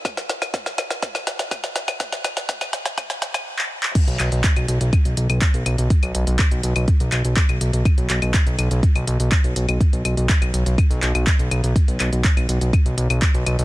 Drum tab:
CC |----------------|----------------|x---------------|----------------|
HH |xxxxxxxxxxxxxxxx|xxxxxxxxxxxx----|xxxxxxxxxxxxxxxx|xxxxxxxxxxxxxxxx|
CL |x--x--x--x--x--x|--x--x--x--x----|--x--x--x--x--x-|-x--x--x--x--x--|
CP |----------------|-------------x-x|--x-x-------x---|----x-----x-x---|
SD |oooooooooooooooo|oooooooooooo----|----------------|----------------|
BD |o---o---o---o---|o---o---o-------|o---o---o---o---|o---o---o---o---|

CC |----------------|----------------|----------------|
HH |xxxxxxxxxxxxxxxx|xxxxxxxxxxxxxxxx|xxxxxxxxxxxxxxxx|
CL |x--x--x--x--x--x|--x--x--x--x--x-|--x--x--x--x--x-|
CP |--x-x-------x---|----x-----x-x---|--x-x-------x---|
SD |----------------|----------------|----------------|
BD |o---o---o---o---|o---o---o---o---|o---o---o---o---|